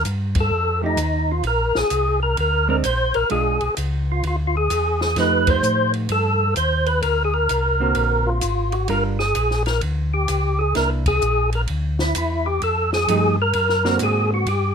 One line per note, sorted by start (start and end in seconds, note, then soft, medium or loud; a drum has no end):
0.05 0.50 G2 medium
0.05 hi-hat pedal medium
0.05 ride medium
0.35 kick medium
0.35 ride medium
0.40 0.82 A4 medium
0.51 0.96 F2 medium
0.82 0.97 F3 medium
0.82 0.97 A3 medium
0.82 0.97 D#4 medium
0.82 1.32 D#4 medium
0.82 0.97 G4 medium
0.97 1.43 D#2 medium
0.97 hi-hat pedal medium
0.97 ride medium
1.32 1.45 F4 medium
1.43 1.73 A#1 medium
1.43 1.78 A#4 medium
1.43 ride medium
1.75 1.84 A#1 soft
1.75 2.20 G#4 loud
1.75 snare soft
1.90 2.36 C2 medium
1.90 hi-hat pedal medium
1.90 ride medium
2.23 2.37 A#4 medium
2.37 2.83 D2 medium
2.37 2.68 A#4 loud
2.37 ride medium
2.68 2.83 G#3 medium
2.68 2.83 C4 medium
2.68 2.84 D4 medium
2.68 2.77 A#4 medium
2.84 3.13 A#1 medium
2.84 3.16 C5 medium
2.84 hi-hat pedal medium
2.84 ride medium
3.14 3.24 A#1 soft
3.14 3.30 A#4 medium
3.14 ride soft
3.30 3.60 B1 medium
3.30 3.58 G#3 medium
3.30 3.59 D4 medium
3.30 3.59 F4 medium
3.30 3.75 G#4 medium
3.30 ride medium
3.61 3.70 B1 soft
3.61 ride soft
3.77 4.23 C#2 medium
3.77 hi-hat pedal medium
3.77 ride medium
4.12 4.25 F4 medium
4.23 4.69 D2 medium
4.23 4.36 F4 medium
4.23 ride medium
4.47 4.56 F4 medium
4.57 5.01 G#4 medium
4.70 5.16 E2 medium
4.70 hi-hat pedal medium
4.70 ride medium
5.01 5.18 G#4 medium
5.01 snare soft
5.16 5.62 F2 medium
5.16 6.47 F3 medium
5.16 6.48 A3 medium
5.16 6.48 D#4 medium
5.16 6.48 G4 medium
5.16 5.50 B4 loud
5.16 snare soft
5.16 ride medium
5.47 5.92 C5 loud
5.47 kick medium
5.47 ride medium
5.63 6.09 A2 medium
5.63 hi-hat pedal medium
5.94 ride soft
6.09 6.55 G2 medium
6.09 6.54 A4 loud
6.09 ride medium
6.56 7.02 D#2 medium
6.56 6.89 C5 medium
6.56 hi-hat pedal soft
6.56 ride medium
6.86 7.02 B4 medium
6.86 ride soft
7.02 7.48 D2 medium
7.02 7.23 A#4 medium
7.02 ride medium
7.25 7.34 G#4 medium
7.34 8.30 A#4 medium
7.49 7.95 C2 medium
7.49 hi-hat pedal medium
7.49 ride medium
7.80 8.40 D3 medium
7.80 8.39 A#3 medium
7.80 8.40 C4 medium
7.80 8.40 F#4 medium
7.95 8.41 A#1 medium
7.95 ride medium
8.27 8.75 F4 medium
8.41 8.88 G#1 medium
8.41 hi-hat pedal medium
8.41 ride medium
8.72 8.88 F#4 medium
8.72 ride soft
8.88 9.34 G1 medium
8.88 9.17 G3 medium
8.88 9.17 D4 medium
8.88 9.17 F4 medium
8.88 9.17 A#4 medium
8.88 9.04 A#4 medium
8.88 ride medium
9.19 9.63 G#4 medium
9.19 snare soft
9.35 9.81 A#1 medium
9.35 hi-hat pedal medium
9.35 ride medium
9.51 snare soft
9.66 9.81 A#4 medium
9.66 snare soft
9.66 ride soft
9.81 10.28 D2 medium
9.81 ride medium
10.14 10.61 G4 medium
10.28 10.74 C#2 medium
10.28 hi-hat pedal soft
10.28 ride medium
10.59 10.75 G#4 medium
10.75 11.21 C2 medium
10.75 11.03 A#3 medium
10.75 11.03 D4 medium
10.75 11.03 E4 medium
10.75 10.90 A#4 loud
10.75 snare soft
10.75 ride medium
11.06 11.50 G#4 medium
11.06 kick medium
11.06 ride medium
11.21 11.67 A#1 medium
11.21 hi-hat pedal medium
11.53 11.62 A#4 medium
11.53 ride soft
11.68 12.14 D2 medium
11.68 ride medium
11.99 12.17 E4 medium
11.99 snare medium
12.15 12.60 E2 medium
12.15 12.48 E4 medium
12.15 hi-hat pedal medium
12.15 ride medium
12.46 12.62 G4 medium
12.62 13.07 F2 medium
12.62 12.91 A4 medium
12.62 ride medium
12.93 13.36 G#4 loud
12.93 snare soft
13.08 13.53 G2 medium
13.08 13.35 F3 medium
13.08 13.36 A3 medium
13.08 13.36 D#4 medium
13.08 13.36 G4 medium
13.08 hi-hat pedal medium
13.08 ride medium
13.42 13.98 A#4 loud
13.53 14.00 F#2 medium
13.53 ride medium
13.69 snare soft
13.85 14.44 D3 medium
13.85 14.44 A#3 medium
13.85 14.44 C4 medium
13.85 14.44 F#4 medium
13.85 snare soft
13.99 14.46 G#2 medium
13.99 hi-hat pedal medium
13.99 ride medium
14.03 14.31 G#4 medium
14.34 14.49 F#4 medium
14.46 14.75 G2 medium
14.46 14.75 G4 medium
14.46 ride medium